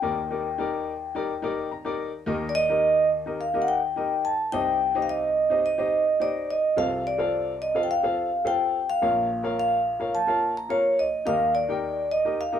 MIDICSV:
0, 0, Header, 1, 3, 480
1, 0, Start_track
1, 0, Tempo, 561798
1, 25, Time_signature, 4, 2, 24, 8
1, 10761, End_track
2, 0, Start_track
2, 0, Title_t, "Vibraphone"
2, 0, Program_c, 0, 11
2, 0, Note_on_c, 0, 79, 81
2, 1436, Note_off_c, 0, 79, 0
2, 2129, Note_on_c, 0, 74, 85
2, 2179, Note_on_c, 0, 75, 109
2, 2188, Note_off_c, 0, 74, 0
2, 2629, Note_off_c, 0, 75, 0
2, 2910, Note_on_c, 0, 77, 79
2, 3091, Note_on_c, 0, 78, 70
2, 3095, Note_off_c, 0, 77, 0
2, 3146, Note_on_c, 0, 79, 85
2, 3149, Note_off_c, 0, 78, 0
2, 3630, Note_on_c, 0, 81, 82
2, 3641, Note_off_c, 0, 79, 0
2, 3865, Note_on_c, 0, 79, 99
2, 3876, Note_off_c, 0, 81, 0
2, 4291, Note_on_c, 0, 77, 63
2, 4299, Note_off_c, 0, 79, 0
2, 4349, Note_off_c, 0, 77, 0
2, 4352, Note_on_c, 0, 75, 88
2, 4824, Note_off_c, 0, 75, 0
2, 4834, Note_on_c, 0, 75, 83
2, 5277, Note_off_c, 0, 75, 0
2, 5311, Note_on_c, 0, 74, 83
2, 5556, Note_off_c, 0, 74, 0
2, 5558, Note_on_c, 0, 75, 84
2, 5794, Note_on_c, 0, 77, 95
2, 5799, Note_off_c, 0, 75, 0
2, 6038, Note_off_c, 0, 77, 0
2, 6040, Note_on_c, 0, 74, 91
2, 6509, Note_on_c, 0, 75, 86
2, 6528, Note_off_c, 0, 74, 0
2, 6590, Note_off_c, 0, 75, 0
2, 6692, Note_on_c, 0, 79, 62
2, 6749, Note_off_c, 0, 79, 0
2, 6757, Note_on_c, 0, 77, 94
2, 7236, Note_on_c, 0, 79, 93
2, 7246, Note_off_c, 0, 77, 0
2, 7600, Note_on_c, 0, 77, 91
2, 7602, Note_off_c, 0, 79, 0
2, 8160, Note_off_c, 0, 77, 0
2, 8198, Note_on_c, 0, 77, 93
2, 8669, Note_on_c, 0, 81, 92
2, 8687, Note_off_c, 0, 77, 0
2, 9003, Note_off_c, 0, 81, 0
2, 9034, Note_on_c, 0, 82, 83
2, 9145, Note_on_c, 0, 73, 85
2, 9154, Note_off_c, 0, 82, 0
2, 9393, Note_on_c, 0, 75, 76
2, 9394, Note_off_c, 0, 73, 0
2, 9626, Note_on_c, 0, 77, 107
2, 9638, Note_off_c, 0, 75, 0
2, 9851, Note_off_c, 0, 77, 0
2, 9866, Note_on_c, 0, 74, 93
2, 10351, Note_on_c, 0, 75, 84
2, 10362, Note_off_c, 0, 74, 0
2, 10598, Note_off_c, 0, 75, 0
2, 10600, Note_on_c, 0, 77, 91
2, 10761, Note_off_c, 0, 77, 0
2, 10761, End_track
3, 0, Start_track
3, 0, Title_t, "Upright piano"
3, 0, Program_c, 1, 0
3, 17, Note_on_c, 1, 63, 78
3, 20, Note_on_c, 1, 67, 69
3, 21, Note_on_c, 1, 39, 69
3, 22, Note_on_c, 1, 51, 62
3, 24, Note_on_c, 1, 70, 74
3, 27, Note_on_c, 1, 74, 84
3, 162, Note_off_c, 1, 63, 0
3, 164, Note_off_c, 1, 67, 0
3, 166, Note_off_c, 1, 70, 0
3, 167, Note_off_c, 1, 74, 0
3, 259, Note_on_c, 1, 63, 70
3, 264, Note_on_c, 1, 70, 60
3, 265, Note_on_c, 1, 67, 61
3, 269, Note_on_c, 1, 74, 75
3, 404, Note_off_c, 1, 63, 0
3, 406, Note_off_c, 1, 70, 0
3, 407, Note_off_c, 1, 67, 0
3, 409, Note_off_c, 1, 74, 0
3, 498, Note_on_c, 1, 63, 84
3, 500, Note_on_c, 1, 67, 71
3, 504, Note_on_c, 1, 70, 75
3, 508, Note_on_c, 1, 74, 87
3, 784, Note_off_c, 1, 63, 0
3, 786, Note_off_c, 1, 67, 0
3, 787, Note_off_c, 1, 70, 0
3, 790, Note_off_c, 1, 74, 0
3, 981, Note_on_c, 1, 63, 82
3, 984, Note_on_c, 1, 67, 78
3, 990, Note_on_c, 1, 70, 74
3, 990, Note_on_c, 1, 74, 95
3, 1125, Note_off_c, 1, 63, 0
3, 1126, Note_off_c, 1, 67, 0
3, 1129, Note_off_c, 1, 70, 0
3, 1129, Note_off_c, 1, 74, 0
3, 1216, Note_on_c, 1, 63, 89
3, 1220, Note_on_c, 1, 67, 84
3, 1224, Note_on_c, 1, 70, 76
3, 1228, Note_on_c, 1, 74, 92
3, 1433, Note_off_c, 1, 63, 0
3, 1435, Note_off_c, 1, 67, 0
3, 1437, Note_off_c, 1, 70, 0
3, 1439, Note_off_c, 1, 74, 0
3, 1465, Note_on_c, 1, 82, 67
3, 1577, Note_on_c, 1, 67, 77
3, 1578, Note_on_c, 1, 63, 79
3, 1581, Note_on_c, 1, 70, 74
3, 1587, Note_on_c, 1, 74, 95
3, 1794, Note_off_c, 1, 63, 0
3, 1794, Note_off_c, 1, 67, 0
3, 1796, Note_off_c, 1, 70, 0
3, 1799, Note_off_c, 1, 74, 0
3, 1911, Note_off_c, 1, 39, 0
3, 1911, Note_off_c, 1, 51, 0
3, 1912, Note_off_c, 1, 82, 0
3, 1933, Note_on_c, 1, 63, 98
3, 1935, Note_on_c, 1, 51, 76
3, 1935, Note_on_c, 1, 67, 82
3, 1937, Note_on_c, 1, 39, 77
3, 1938, Note_on_c, 1, 70, 79
3, 1942, Note_on_c, 1, 75, 96
3, 2152, Note_off_c, 1, 63, 0
3, 2153, Note_off_c, 1, 67, 0
3, 2154, Note_off_c, 1, 70, 0
3, 2157, Note_off_c, 1, 75, 0
3, 2301, Note_on_c, 1, 63, 70
3, 2303, Note_on_c, 1, 67, 69
3, 2306, Note_on_c, 1, 70, 65
3, 2310, Note_on_c, 1, 75, 80
3, 2586, Note_off_c, 1, 63, 0
3, 2588, Note_off_c, 1, 67, 0
3, 2589, Note_off_c, 1, 70, 0
3, 2591, Note_off_c, 1, 75, 0
3, 2784, Note_on_c, 1, 63, 67
3, 2785, Note_on_c, 1, 67, 59
3, 2791, Note_on_c, 1, 70, 66
3, 2795, Note_on_c, 1, 75, 72
3, 2927, Note_off_c, 1, 63, 0
3, 2927, Note_off_c, 1, 67, 0
3, 2931, Note_off_c, 1, 70, 0
3, 2932, Note_off_c, 1, 75, 0
3, 3022, Note_on_c, 1, 63, 73
3, 3025, Note_on_c, 1, 70, 70
3, 3026, Note_on_c, 1, 67, 69
3, 3030, Note_on_c, 1, 75, 81
3, 3237, Note_off_c, 1, 63, 0
3, 3238, Note_off_c, 1, 70, 0
3, 3239, Note_off_c, 1, 67, 0
3, 3240, Note_off_c, 1, 75, 0
3, 3384, Note_on_c, 1, 63, 70
3, 3385, Note_on_c, 1, 67, 67
3, 3391, Note_on_c, 1, 70, 65
3, 3394, Note_on_c, 1, 75, 76
3, 3668, Note_off_c, 1, 63, 0
3, 3669, Note_off_c, 1, 67, 0
3, 3671, Note_off_c, 1, 70, 0
3, 3673, Note_off_c, 1, 75, 0
3, 3827, Note_off_c, 1, 51, 0
3, 3828, Note_off_c, 1, 39, 0
3, 3864, Note_on_c, 1, 63, 81
3, 3869, Note_on_c, 1, 67, 67
3, 3870, Note_on_c, 1, 48, 67
3, 3871, Note_on_c, 1, 36, 67
3, 3872, Note_on_c, 1, 72, 77
3, 3875, Note_on_c, 1, 75, 93
3, 4077, Note_off_c, 1, 63, 0
3, 4080, Note_off_c, 1, 67, 0
3, 4081, Note_off_c, 1, 72, 0
3, 4083, Note_off_c, 1, 75, 0
3, 4228, Note_on_c, 1, 63, 82
3, 4230, Note_on_c, 1, 67, 74
3, 4231, Note_on_c, 1, 72, 69
3, 4237, Note_on_c, 1, 75, 85
3, 4510, Note_off_c, 1, 63, 0
3, 4511, Note_off_c, 1, 67, 0
3, 4512, Note_off_c, 1, 72, 0
3, 4514, Note_off_c, 1, 75, 0
3, 4699, Note_on_c, 1, 63, 77
3, 4705, Note_on_c, 1, 67, 60
3, 4708, Note_on_c, 1, 72, 67
3, 4709, Note_on_c, 1, 75, 80
3, 4844, Note_off_c, 1, 63, 0
3, 4847, Note_off_c, 1, 67, 0
3, 4849, Note_off_c, 1, 72, 0
3, 4849, Note_off_c, 1, 75, 0
3, 4938, Note_on_c, 1, 63, 74
3, 4940, Note_on_c, 1, 67, 69
3, 4944, Note_on_c, 1, 72, 72
3, 4949, Note_on_c, 1, 75, 81
3, 5154, Note_off_c, 1, 63, 0
3, 5155, Note_off_c, 1, 67, 0
3, 5157, Note_off_c, 1, 72, 0
3, 5160, Note_off_c, 1, 75, 0
3, 5297, Note_on_c, 1, 63, 74
3, 5300, Note_on_c, 1, 67, 70
3, 5305, Note_on_c, 1, 72, 67
3, 5308, Note_on_c, 1, 75, 81
3, 5584, Note_off_c, 1, 63, 0
3, 5586, Note_off_c, 1, 67, 0
3, 5588, Note_off_c, 1, 72, 0
3, 5590, Note_off_c, 1, 75, 0
3, 5754, Note_off_c, 1, 48, 0
3, 5755, Note_off_c, 1, 36, 0
3, 5779, Note_on_c, 1, 65, 79
3, 5784, Note_on_c, 1, 48, 68
3, 5784, Note_on_c, 1, 69, 70
3, 5787, Note_on_c, 1, 36, 66
3, 5787, Note_on_c, 1, 72, 76
3, 5792, Note_on_c, 1, 77, 92
3, 5995, Note_off_c, 1, 65, 0
3, 5997, Note_off_c, 1, 69, 0
3, 5999, Note_off_c, 1, 72, 0
3, 6001, Note_off_c, 1, 77, 0
3, 6134, Note_on_c, 1, 65, 78
3, 6139, Note_on_c, 1, 69, 70
3, 6143, Note_on_c, 1, 72, 71
3, 6145, Note_on_c, 1, 77, 83
3, 6423, Note_off_c, 1, 65, 0
3, 6425, Note_off_c, 1, 69, 0
3, 6427, Note_off_c, 1, 72, 0
3, 6428, Note_off_c, 1, 77, 0
3, 6619, Note_on_c, 1, 65, 73
3, 6623, Note_on_c, 1, 69, 67
3, 6626, Note_on_c, 1, 72, 64
3, 6629, Note_on_c, 1, 77, 85
3, 6764, Note_off_c, 1, 65, 0
3, 6766, Note_off_c, 1, 69, 0
3, 6768, Note_off_c, 1, 72, 0
3, 6769, Note_off_c, 1, 77, 0
3, 6861, Note_on_c, 1, 65, 75
3, 6864, Note_on_c, 1, 69, 65
3, 6868, Note_on_c, 1, 72, 69
3, 6871, Note_on_c, 1, 77, 84
3, 7076, Note_off_c, 1, 65, 0
3, 7077, Note_off_c, 1, 69, 0
3, 7079, Note_off_c, 1, 72, 0
3, 7081, Note_off_c, 1, 77, 0
3, 7217, Note_on_c, 1, 65, 70
3, 7218, Note_on_c, 1, 69, 71
3, 7222, Note_on_c, 1, 72, 67
3, 7226, Note_on_c, 1, 77, 79
3, 7504, Note_off_c, 1, 65, 0
3, 7505, Note_off_c, 1, 69, 0
3, 7507, Note_off_c, 1, 72, 0
3, 7509, Note_off_c, 1, 77, 0
3, 7672, Note_off_c, 1, 48, 0
3, 7673, Note_off_c, 1, 36, 0
3, 7705, Note_on_c, 1, 65, 72
3, 7705, Note_on_c, 1, 70, 69
3, 7708, Note_on_c, 1, 34, 72
3, 7708, Note_on_c, 1, 46, 67
3, 7708, Note_on_c, 1, 73, 72
3, 7712, Note_on_c, 1, 77, 81
3, 7918, Note_off_c, 1, 65, 0
3, 7918, Note_off_c, 1, 70, 0
3, 7919, Note_off_c, 1, 73, 0
3, 7921, Note_off_c, 1, 77, 0
3, 8059, Note_on_c, 1, 65, 75
3, 8060, Note_on_c, 1, 70, 74
3, 8063, Note_on_c, 1, 73, 66
3, 8070, Note_on_c, 1, 77, 86
3, 8345, Note_off_c, 1, 65, 0
3, 8346, Note_off_c, 1, 70, 0
3, 8347, Note_off_c, 1, 73, 0
3, 8351, Note_off_c, 1, 77, 0
3, 8540, Note_on_c, 1, 65, 67
3, 8541, Note_on_c, 1, 70, 64
3, 8549, Note_on_c, 1, 73, 65
3, 8549, Note_on_c, 1, 77, 76
3, 8685, Note_off_c, 1, 65, 0
3, 8686, Note_off_c, 1, 70, 0
3, 8689, Note_off_c, 1, 73, 0
3, 8689, Note_off_c, 1, 77, 0
3, 8776, Note_on_c, 1, 65, 78
3, 8777, Note_on_c, 1, 70, 67
3, 8783, Note_on_c, 1, 73, 64
3, 8785, Note_on_c, 1, 77, 82
3, 8993, Note_off_c, 1, 65, 0
3, 8994, Note_off_c, 1, 70, 0
3, 8997, Note_off_c, 1, 73, 0
3, 8998, Note_off_c, 1, 77, 0
3, 9135, Note_on_c, 1, 65, 69
3, 9139, Note_on_c, 1, 70, 70
3, 9142, Note_on_c, 1, 73, 63
3, 9145, Note_on_c, 1, 77, 79
3, 9424, Note_off_c, 1, 65, 0
3, 9426, Note_off_c, 1, 70, 0
3, 9428, Note_off_c, 1, 73, 0
3, 9429, Note_off_c, 1, 77, 0
3, 9594, Note_off_c, 1, 34, 0
3, 9594, Note_off_c, 1, 46, 0
3, 9615, Note_on_c, 1, 63, 80
3, 9619, Note_on_c, 1, 67, 74
3, 9622, Note_on_c, 1, 70, 68
3, 9623, Note_on_c, 1, 39, 68
3, 9623, Note_on_c, 1, 51, 66
3, 9626, Note_on_c, 1, 75, 82
3, 9834, Note_off_c, 1, 63, 0
3, 9835, Note_off_c, 1, 67, 0
3, 9837, Note_off_c, 1, 70, 0
3, 9839, Note_off_c, 1, 75, 0
3, 9984, Note_on_c, 1, 63, 70
3, 9989, Note_on_c, 1, 67, 69
3, 9989, Note_on_c, 1, 70, 70
3, 9996, Note_on_c, 1, 79, 89
3, 10269, Note_off_c, 1, 63, 0
3, 10271, Note_off_c, 1, 67, 0
3, 10272, Note_off_c, 1, 70, 0
3, 10275, Note_off_c, 1, 79, 0
3, 10466, Note_on_c, 1, 63, 71
3, 10468, Note_on_c, 1, 67, 68
3, 10470, Note_on_c, 1, 70, 61
3, 10475, Note_on_c, 1, 75, 78
3, 10609, Note_off_c, 1, 63, 0
3, 10610, Note_off_c, 1, 67, 0
3, 10611, Note_off_c, 1, 70, 0
3, 10613, Note_off_c, 1, 75, 0
3, 10701, Note_on_c, 1, 63, 72
3, 10703, Note_on_c, 1, 67, 69
3, 10706, Note_on_c, 1, 70, 68
3, 10708, Note_on_c, 1, 75, 75
3, 10761, Note_off_c, 1, 39, 0
3, 10761, Note_off_c, 1, 51, 0
3, 10761, Note_off_c, 1, 63, 0
3, 10761, Note_off_c, 1, 67, 0
3, 10761, Note_off_c, 1, 70, 0
3, 10761, Note_off_c, 1, 75, 0
3, 10761, End_track
0, 0, End_of_file